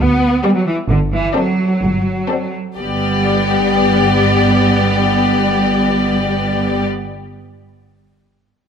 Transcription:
0.00 D2 B3
0.44 G3 B3 G4 D5
0.56 F#3
0.67 E3
0.89 G1 D3
1.12 E3
1.35 F#3 C4 A4 D5
1.81 G1
2.29 C4 A4 D5
2.77 G1 G3 B3 G4 D5

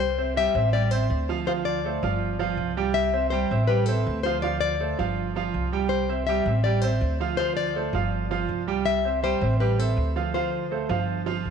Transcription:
Already playing: C2
0.00 C5
0.18 C4 C5 E5
0.36 G3 G4 E5 G5
0.55 A1 C4 C5 E5
0.73 G3 G4 D5 G5
0.91 C4 C5 E5
1.10 D2
1.29 F3 F4 F5
1.47 F3 F4 C5 F5
1.65 D5
1.85 A3 A4 C5
2.03 G1 F3 F4 F5
2.39 F3 F4 F5
2.57 C2
2.77 G3 G4 G5
2.94 E5
3.13 C4 C5 E5
3.30 G3 G4 C5 G5
3.51 A1 C4 C5 E5
3.68 G3 G4 B4 G5
3.86 C4 A4 C5 E5
4.07 D2
4.23 F3 F4 C5 F5
4.42 F3 F4 D5 F5
4.61 D5
4.80 A3 A4 C5
4.99 G1 F3 F4 F5
5.36 F3 F4 F5
5.54 C2
5.73 G3 G4 G5
5.89 C5
6.09 C4 C5 E5
6.27 G3 G4 E5 G5
6.46 A1 C4 C5 E5
6.64 G3 G4 D5 G5
6.82 C4 C5 E5
7.01 D2
7.20 F3 F4 F5
7.37 F3 F4 C5 F5
7.57 D5
7.76 A3 A4 C5
7.93 G1 F3 F4 F5
8.31 F3 F4 F5
8.49 C2
8.68 G3 G4 G5
8.86 E5
9.05 C4 C5 E5
9.23 G3 G4 C5 G5
9.41 A1 C4 C5 E5
9.60 G3 G4 B4 G5
9.79 C4 A4 C5 E5
9.97 D2
10.16 F3 F4 F5
10.34 F3 F4 C5 F5
10.71 A3 A4 C5
10.89 G1 F3 F4 F5
11.26 F3 F4 F5
11.45 C2

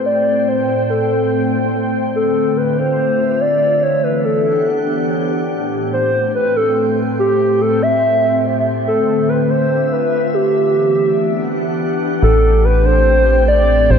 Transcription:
Already playing: A2 A3 C4 C5 G5
0.06 D5
0.48 C5
0.90 A4
2.15 D3 A4
2.39 F4
2.57 B4
2.78 C5
2.89 E5
3.41 D5
3.83 E3 C#5
3.90 D4
4.02 B3 B4
4.25 G4 A4 F#5
5.51 A2
5.72 A3
5.81 C5
5.90 C4 C5
6.11 G5
6.35 B4
6.56 A4
7.19 G4
7.61 A4
7.82 E5
8.87 D3 A4
9.23 E5
9.29 B4
9.50 F4 C5
9.92 B4
10.34 G4
10.55 E3
10.66 B3
10.79 D4
11.15 F#5
11.21 G4
12.22 A1 A2 A4
12.33 A3 G5
12.53 C4 C5
12.65 B4
12.85 C5
13.48 D5
13.90 A1 C5

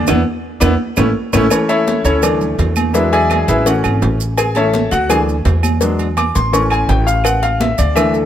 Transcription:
0.07 E2 B3 D4 E4, cowbell, high conga, high timbale, claves, maracas
0.60 E2 B3 D4 E4, cowbell, high conga, high timbale, claves, maracas
0.97 A1 A3 C#4 E4, cowbell, high conga, high timbale, claves, maracas
1.33 A1 A3 C#4 E4, cowbell, high conga, high timbale, claves, maracas
1.50 E3 A3 C#4 E4 A4 C#5, cowbell, high conga, low agogo, claves, maracas
1.69 E4 A4 C#5 E5, cowbell, high conga, low agogo, maracas
1.88 cowbell, high conga, low timbale, maracas
2.05 D2 C#4 E4 A4 C#5, low agogo, maracas
2.22 E3 A3 D4 A4 D5, cowbell, high conga, low conga, low agogo, claves, maracas
2.41 high conga, low conga, maracas
2.59 E2, cowbell, high conga, low timbale, low agogo, maracas
2.76 high conga, low agogo, claves, maracas
2.93 F#3 G#3 D4 E4 G#4 B4 E5, cowbell, high conga, maracas
3.13 G#4 D5 E5 G#5, high conga, low agogo, maracas
3.30 cowbell, high conga, low timbale, low agogo, claves, maracas
3.48 A1 E4 G#4 B4 E5, cowbell, high conga, maracas
3.66 E3 A3 C#4 F#4 F#5, cowbell, high conga, low agogo, maracas
3.84 G#1, high conga, low agogo, claves, maracas
4.02 A1, cowbell, high conga, low timbale, maracas
4.20 maracas
4.38 G#4 G#5, cowbell, high conga, low agogo, claves, maracas
4.55 E3 A3 C#4 A4 C#5 E5 A5, cowbell, high conga, low agogo, maracas
4.73 cowbell, high conga, low timbale, maracas
4.91 D2 F#4 F#5, low agogo, maracas
5.09 E3 A3 D4 G#4 G#5, cowbell, high conga, low conga, low agogo, claves, maracas
5.28 high conga, maracas
5.45 E2, cowbell, high conga, low timbale, low agogo, maracas
5.63 high conga, low agogo, claves, maracas
5.81 F#3 G#3 D4, cowbell, maracas
5.99 high conga, low agogo, maracas
6.17 D6, cowbell, high conga, low timbale, low agogo, claves, maracas
6.35 A1 C6, cowbell, high conga, maracas
6.52 E3 A3 C#4 C#6, cowbell, high conga, low agogo, maracas
6.70 G#5, high conga, low agogo, claves, maracas
6.89 A1 G5, cowbell, high conga, low timbale, maracas
7.07 F5, maracas
7.24 F#5, cowbell, high conga, low agogo, claves, maracas
7.43 F5, cowbell, high conga, low agogo, maracas
7.60 E5, cowbell, high conga, low timbale, maracas
7.78 D2 D5, low agogo, maracas
7.95 E3 A3 D4 E5, cowbell, high conga, low conga, low agogo, claves, maracas
8.13 A4, high conga, maracas

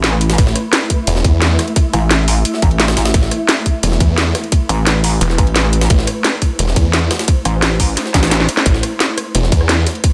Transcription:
Already playing: A1 A3 E4 B4
0.04 snare, closed hi-hat, ride
0.12 cross-stick
0.21 closed hi-hat, ride
0.30 snare, ride
0.38 A1 E5, kick, closed hi-hat, ride
0.47 snare
0.56 cross-stick, closed hi-hat, ride
0.73 snare, closed hi-hat, ride
0.90 kick, closed hi-hat, ride
1.07 E1, closed hi-hat, ride
1.16 snare
1.24 E2, kick, closed hi-hat, ride
1.42 snare, closed hi-hat, ride
1.59 cross-stick, snare, closed hi-hat, ride
1.68 ride
1.76 kick, closed hi-hat, ride
1.93 A1, cross-stick, closed hi-hat, ride
2.11 snare, closed hi-hat, ride
2.28 open hi-hat, ride
2.45 closed hi-hat, ride
2.54 snare
2.62 A1, kick, closed hi-hat, ride
2.71 ride
2.80 snare, closed hi-hat, ride
2.88 cross-stick, snare, ride
2.97 A1, snare, closed hi-hat, ride
3.05 snare, ride
3.14 A1 B4, kick, closed hi-hat, ride
3.23 snare
3.31 cross-stick, closed hi-hat, ride
3.49 snare, closed hi-hat, ride
3.66 kick, closed hi-hat, ride
3.83 E1, closed hi-hat, ride
3.92 snare
4.00 E2, kick, closed hi-hat, ride
4.18 snare, closed hi-hat, ride
4.35 cross-stick, snare, closed hi-hat, ride
4.44 ride
4.52 kick, closed hi-hat, ride
4.69 A1, cross-stick, closed hi-hat, ride
4.87 snare, closed hi-hat, ride
5.04 open hi-hat, ride
5.21 E1, closed hi-hat, ride
5.30 snare
5.38 A1, kick, closed hi-hat, ride
5.47 ride
5.56 snare, closed hi-hat, ride
5.64 cross-stick
5.73 closed hi-hat, ride
5.81 snare, ride
5.90 A1 C5, kick, closed hi-hat, ride
5.99 snare
6.07 cross-stick, closed hi-hat, ride
6.24 snare, closed hi-hat, ride
6.42 kick, closed hi-hat, ride
6.59 E1, closed hi-hat, ride
6.68 snare
6.76 E2, kick, closed hi-hat, ride
6.93 snare, closed hi-hat, ride
7.11 cross-stick, snare, closed hi-hat, ride
7.19 snare, ride
7.28 kick, closed hi-hat, ride
7.45 A1, cross-stick, closed hi-hat, ride
7.62 snare, closed hi-hat, ride
7.80 kick, open hi-hat, ride
7.97 snare, closed hi-hat, ride
8.06 snare
8.14 A1, kick, snare, closed hi-hat, ride
8.23 snare, ride
8.31 snare, closed hi-hat, ride
8.40 snare
8.49 closed hi-hat, ride
8.57 snare
8.66 A1 A3 E4 B4, kick, closed hi-hat, ride
8.74 snare
8.83 cross-stick, closed hi-hat, ride
9.00 snare, closed hi-hat, ride
9.18 cross-stick, closed hi-hat, ride
9.35 E1, closed hi-hat, ride
9.43 snare
9.52 E2, kick, closed hi-hat, ride
9.61 cross-stick
9.69 snare, closed hi-hat, ride
9.86 snare, closed hi-hat, ride
9.95 ride
10.04 kick, closed hi-hat, ride

